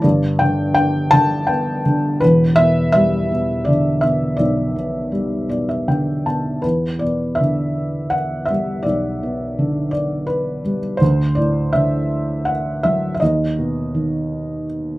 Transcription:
0.02 G1 G2 D5
0.39 D3 G5
0.74 D4 G5
1.11 D3 A5
1.47 B3 G5
1.86 D3
2.20 E1 E2 B4
2.56 B2 E5
2.92 G3 E5
3.32 B2
3.65 D3 D5
4.01 B2 E5
4.37 B1 D5
4.76 B2
5.12 G3
5.49 B2 D5
5.69 E5
5.88 D3 G5
6.26 B2 A5
6.62 E2 B4
6.99 B2 D5
7.35 E5
7.40 D3
8.10 F#5
8.46 E5
8.50 G3
8.83 B1 D5
9.23 B2
9.59 D3
9.91 D5
10.27 B4
10.65 G3
10.97 C5
11.01 D2
11.35 A2 D5
11.73 D3 E5
12.45 F#5
12.83 F#3 E5
13.14 E5
13.20 D#2 D#5
13.59 B2
13.95 D#3

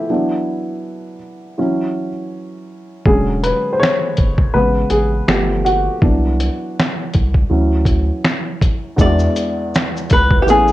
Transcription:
Already playing: F3 A3 B3 E4 G4
0.09 E3 F#3 B3 D4
1.58 E3 F#3 C#4
3.06 E1 D3 F#3 G#3 C#4 G#4, kick
3.43 B4, closed hi-hat
3.73 C5
3.80 C#5, snare
3.84 finger snap
4.17 F#1, kick, closed hi-hat
4.38 kick
4.54 A1 C#3 G#3 B3 B4
4.90 A1 G#4, closed hi-hat
5.28 G1 F3 A3 B3 G4, finger snap, snare
5.65 F#4, closed hi-hat
6.01 C2 E3 F#3 B3 D4, kick
6.40 closed hi-hat
6.79 finger snap, snare
7.13 C2, kick, closed hi-hat
7.34 kick
7.50 D2 E3 F#3 C#4
7.85 kick, closed hi-hat
8.24 finger snap, snare
8.61 kick, closed hi-hat
8.96 E2 G#3 B3 D4, kick, shaker
9.01 E4 F#4 D5
9.19 shaker
9.36 closed hi-hat, shaker
9.75 finger snap, snare, shaker
9.97 shaker
10.10 C#2 B4, kick, closed hi-hat, shaker
10.31 kick
10.42 A1 E3 G4
10.47 A3 B3 C#4 G#4, shaker
10.68 shaker

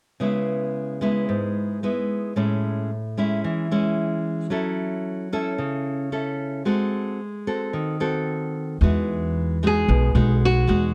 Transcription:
0.20 C#3 G#3 B3 E4
1.01 G#3 B3 E4
1.29 G#2
1.83 G#3 B3 E4
2.36 A2 G#3 C#4 E4
3.17 G#3 C#4 E4
3.44 E3
3.71 G#3 C#4 E4
4.50 F#3 C#4 E4 A4
5.33 C#4 E4 A4
5.58 C#3
6.12 C#4 E4 A4
6.65 G#3 C4 F#4 A4
7.47 C4 F#4 A4
7.73 D#3
8.00 C4 F#4 A4
8.81 E2 E3 G#3 D#4 F#4
9.63 G#3 D#4 F#4
9.67 G#4
9.88 B1 B2
10.15 B1 G#3 D#4 F#4
10.45 F#4
10.67 E2 G#3 D#4 F#4

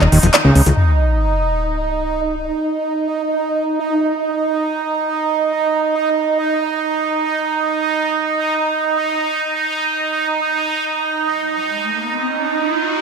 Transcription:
Already playing: D#4
0.02 D#1, clap, high bongo
0.12 D#1 D#3, open hi-hat
0.23 D#1 F3, closed hi-hat
0.34 clap, closed hi-hat, high bongo
0.45 C#2 C#3
0.55 C#2 C#3, open hi-hat
0.66 C#2 D#3, closed hi-hat
0.77 D#4, sub drop
11.13 riser

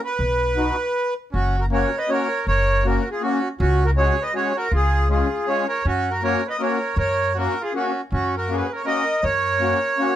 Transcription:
0.04 B4
0.19 B1
0.55 B3 D#4 F#4
1.32 F#1 C#4 F#4
1.59 F#4 A#4
1.70 A#3 C#4 F#4 A#4 C#5
1.98 B4 D#5
2.08 A#3 C#4 F#4 C#5
2.13 A#4
2.47 F#1 A#4 C#5
2.83 A#3 C#4 F#4 A#4
3.11 F4 G#4
3.21 A#3 C#4 F#4
3.60 C#2 C#4 F#4
3.85 F#4 A#4
3.96 G#3 C#4 F#4 G#4 C#5
4.22 B4 D#5
4.33 G#3 C#4 F#4 G#4 C#5
4.56 F#4 A#4
4.71 C#2 F4 G#4
5.08 G#3 C#4 F4 G#4
5.47 G#3 C#4 F4 G#4 C#5
5.68 A#4 C#5
5.85 F#2 C#4 F#4
6.11 F#4 A#4
6.22 A#3 C#4 F#4 A#4 C#5
6.47 B4 D#5
6.59 A#3 C#4 F#4 A#4 C#5
6.96 F#2 A#4 C#5
7.35 A#3 C#4 F#4 A#4
7.61 F4 G#4
7.73 A#3 C#4 F#4
8.12 F#2 C#4 F#4
8.37 F#4 A#4
8.48 A#3 C#4 F#4
8.53 G#4 B4
8.72 A#4 C#5
8.85 A#3 C#4 F#4 A#4 D#5
9.23 F#2 A#4 C#5
9.59 A#3 C#4 F#4
9.98 A#3 C#4 F#4

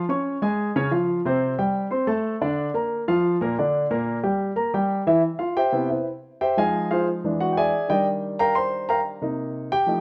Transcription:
0.09 C#4 C#5 C#6
0.42 G#3 G#4 G#5
0.76 C#3 C#4 C#5
0.91 F3 F4 F5
1.25 C3 C4 C5
1.58 G3 G4 G5
1.91 C4 C5 C6
2.07 A3 A4 A5
2.42 D3 D4 D5
2.74 A#3 A#4 A#5
3.08 F3 F4 F5
3.41 A#2 A#3 A#4
3.59 D3 D4 D5
3.91 A#2 A#3 A#4
4.23 G3 G4 G5
4.56 A#3 A#4 A#5
4.74 G3 G4 G5
5.07 E3 E4 E5
5.39 F4 F5
5.57 G4 C5 E5 G5
5.72 C3 B3 E4
5.90 E4 B4 C5 E5
6.41 G4 C5 E5 G5
6.57 F3 G#3 D#4 G#4 D#5 F5 G#5
6.91 F4 G#4 C5 F5
7.24 E3 G#3 D4
7.41 F#4 F#5
7.53 G5
7.57 G#4 D5 E5 G#5
7.88 D#3 G3 D4 G4 D5 D#5 G5
8.39 A#4 F5 G5 A#5
8.55 C5 C6
8.89 A#4 F5 G5 A#5
9.21 C3 A#3 D#4
9.72 G4 G5
9.87 F3 A3 D#4

